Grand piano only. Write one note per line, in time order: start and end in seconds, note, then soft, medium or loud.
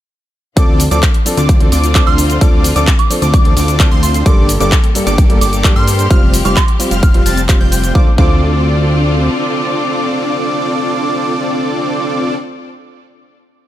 0.56 0.88 F3 loud
0.56 0.88 C4 medium
0.56 0.89 D4 medium
0.56 0.89 A4 loud
0.91 0.98 F3 loud
0.91 0.98 C4 medium
0.91 0.99 D4 medium
0.91 0.99 A4 loud
1.25 1.37 F3 medium
1.25 1.37 C4 medium
1.25 1.38 D4 medium
1.25 1.38 A4 loud
1.60 1.67 F3 medium
1.60 1.68 C4 medium
1.60 1.68 D4 medium
1.60 1.68 A4 medium
1.95 2.02 F3 medium
1.95 2.02 C4 medium
1.95 2.02 D4 medium
1.95 2.03 A4 loud
2.41 2.73 F3 loud
2.41 2.73 C4 medium
2.41 2.73 D4 medium
2.41 2.73 A4 loud
2.75 2.83 F3 loud
2.75 2.83 C4 medium
2.75 2.83 D4 medium
2.75 2.83 A4 loud
3.10 3.22 F3 medium
3.10 3.22 C4 medium
3.10 3.22 D4 medium
3.10 3.22 A4 loud
3.45 3.52 F3 medium
3.45 3.52 C4 medium
3.45 3.53 D4 medium
3.45 3.53 A4 medium
3.79 3.87 F3 medium
3.79 3.87 C4 medium
3.79 3.87 D4 medium
3.79 3.87 A4 loud
4.25 4.57 G2 loud
4.25 4.58 G3 medium
4.25 4.58 A#3 medium
4.25 4.58 D4 medium
4.25 4.58 A4 loud
4.60 4.67 G2 loud
4.60 4.68 G3 medium
4.60 4.68 A#3 loud
4.60 4.68 D4 medium
4.60 4.68 A4 loud
4.95 5.06 G2 loud
4.95 5.07 G3 medium
4.95 5.07 A#3 medium
4.95 5.07 D4 medium
4.95 5.07 A4 loud
5.29 5.37 G2 medium
5.29 5.37 G3 medium
5.29 5.37 A#3 medium
5.29 5.37 D4 medium
5.29 5.37 A4 loud
5.64 5.71 G2 medium
5.64 5.71 G3 medium
5.64 5.72 A#3 medium
5.64 5.72 D4 medium
5.64 5.72 A4 loud
6.10 6.42 G3 loud
6.10 6.42 C4 medium
6.10 6.42 F4 medium
6.10 6.43 C5 loud
6.44 6.52 G3 loud
6.44 6.52 C4 medium
6.44 6.52 F4 medium
6.44 6.53 C5 loud
6.79 6.91 G3 medium
6.79 6.91 C4 medium
6.79 6.91 F4 medium
6.79 6.92 C5 loud
7.14 7.21 G3 medium
7.14 7.22 C4 medium
7.14 7.22 F4 medium
7.14 7.22 C5 loud
7.48 7.56 G3 medium
7.48 7.56 C4 medium
7.48 7.56 F4 medium
7.48 7.57 C5 loud
7.93 8.07 A3 medium
7.93 8.08 D4 medium
7.93 8.08 F4 medium
7.93 8.09 C5 loud
8.16 12.32 A3 medium
8.16 12.34 D4 medium
8.16 12.35 F4 medium
8.16 12.36 C5 medium